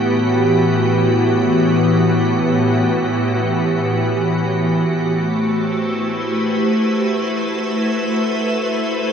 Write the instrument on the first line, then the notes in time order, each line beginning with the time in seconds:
ambient pad
Already playing: A2 E3 B3 F#4 G4
4.88 A3
5.19 C5
5.56 E4 B4